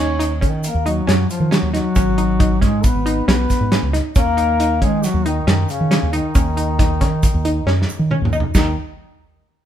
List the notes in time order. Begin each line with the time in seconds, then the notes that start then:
Already playing: D#2 C#4 D#4 C#5
0.19 D#4, closed hi-hat
0.41 D#3 C#4, kick, closed hi-hat
0.63 A#3 A#4, closed hi-hat, shaker
0.74 D#2
0.86 F#3 D#4 F#4, closed hi-hat
1.07 F#2 F#3 C#4 F#4, snare, closed hi-hat
1.30 F3 F4, closed hi-hat, shaker
1.40 D#3
1.51 F#3 C#4 F#4, snare, closed hi-hat
1.62 D#2
1.74 F#3 D#4 F#4, snare, closed hi-hat
1.95 G#1 C#4, kick, closed hi-hat, shaker
2.18 D#4, closed hi-hat
2.40 D#4, kick, closed hi-hat
2.61 G#2 G#3 C#4 G#4, kick, snare, closed hi-hat
2.84 B3 B4, kick, closed hi-hat, shaker
2.95 G#1
3.06 D#4, closed hi-hat
3.27 B1 B3 C#4 B4, snare, closed hi-hat
3.50 kick, snare, closed hi-hat, shaker
3.61 G#2
3.72 C#4, snare, closed hi-hat
3.82 C#2
3.93 D#4, snare, closed hi-hat
4.15 D#2 A#3 C#4 A#4, kick, closed hi-hat, shaker
4.37 D#4, closed hi-hat
4.60 D#4, closed hi-hat
4.82 D#3 G#3 C#4 G#4, kick, closed hi-hat
5.03 F#3 F#4, snare, closed hi-hat, shaker
5.14 D#2
5.26 D#3 D#4, closed hi-hat
5.47 F#2 D#3 C#4 D#4, snare, closed hi-hat
5.69 C#3 C#4, closed hi-hat, shaker
5.81 D#3
5.91 C#4, snare, closed hi-hat
6.03 D#2
6.13 D#3 D#4, closed hi-hat
6.35 D#2 C#4, kick, closed hi-hat, shaker
6.57 D#4, closed hi-hat
6.79 D#4, kick, snare, closed hi-hat
7.01 D#3 C#4, kick, snare, closed hi-hat
7.23 kick, closed hi-hat, shaker
7.34 D#2
7.45 D#4, closed hi-hat
7.66 F#2 C#4, snare
7.82 snare
7.89 shaker
7.99 D#3
8.11 C#4, mid tom
8.21 D#2, mid tom
8.32 D#4, shaker
8.40 floor tom
8.54 D#2 D#3 D#4, kick, snare, crash, shaker